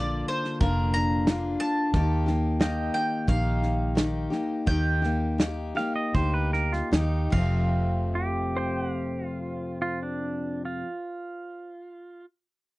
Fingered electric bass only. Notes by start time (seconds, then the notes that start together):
Already playing: A#1
0.61 F1
1.94 D#2
3.28 A#1
4.67 D#2
6.15 D2
6.92 D#2
7.33 F1